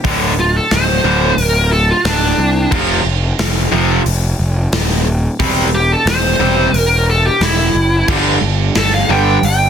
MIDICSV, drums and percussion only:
0, 0, Header, 1, 2, 480
1, 0, Start_track
1, 0, Tempo, 669643
1, 38, Time_signature, 4, 2, 24, 8
1, 6949, End_track
2, 0, Start_track
2, 0, Title_t, "Drums"
2, 33, Note_on_c, 9, 46, 59
2, 34, Note_on_c, 9, 36, 100
2, 105, Note_off_c, 9, 46, 0
2, 106, Note_off_c, 9, 36, 0
2, 509, Note_on_c, 9, 46, 56
2, 512, Note_on_c, 9, 38, 106
2, 581, Note_off_c, 9, 46, 0
2, 583, Note_off_c, 9, 38, 0
2, 990, Note_on_c, 9, 46, 55
2, 1061, Note_off_c, 9, 46, 0
2, 1469, Note_on_c, 9, 46, 54
2, 1471, Note_on_c, 9, 38, 99
2, 1540, Note_off_c, 9, 46, 0
2, 1543, Note_off_c, 9, 38, 0
2, 1950, Note_on_c, 9, 36, 109
2, 1950, Note_on_c, 9, 49, 93
2, 2022, Note_off_c, 9, 36, 0
2, 2022, Note_off_c, 9, 49, 0
2, 2430, Note_on_c, 9, 46, 55
2, 2432, Note_on_c, 9, 38, 108
2, 2501, Note_off_c, 9, 46, 0
2, 2504, Note_off_c, 9, 38, 0
2, 2910, Note_on_c, 9, 46, 53
2, 2981, Note_off_c, 9, 46, 0
2, 3387, Note_on_c, 9, 46, 50
2, 3390, Note_on_c, 9, 38, 99
2, 3459, Note_off_c, 9, 46, 0
2, 3462, Note_off_c, 9, 38, 0
2, 3869, Note_on_c, 9, 36, 100
2, 3869, Note_on_c, 9, 46, 60
2, 3941, Note_off_c, 9, 36, 0
2, 3941, Note_off_c, 9, 46, 0
2, 4351, Note_on_c, 9, 46, 59
2, 4353, Note_on_c, 9, 38, 110
2, 4422, Note_off_c, 9, 46, 0
2, 4425, Note_off_c, 9, 38, 0
2, 4832, Note_on_c, 9, 46, 60
2, 4904, Note_off_c, 9, 46, 0
2, 5311, Note_on_c, 9, 46, 53
2, 5314, Note_on_c, 9, 38, 95
2, 5383, Note_off_c, 9, 46, 0
2, 5386, Note_off_c, 9, 38, 0
2, 5793, Note_on_c, 9, 49, 90
2, 5794, Note_on_c, 9, 36, 108
2, 5865, Note_off_c, 9, 49, 0
2, 5866, Note_off_c, 9, 36, 0
2, 6273, Note_on_c, 9, 46, 52
2, 6276, Note_on_c, 9, 38, 104
2, 6345, Note_off_c, 9, 46, 0
2, 6347, Note_off_c, 9, 38, 0
2, 6761, Note_on_c, 9, 46, 55
2, 6832, Note_off_c, 9, 46, 0
2, 6949, End_track
0, 0, End_of_file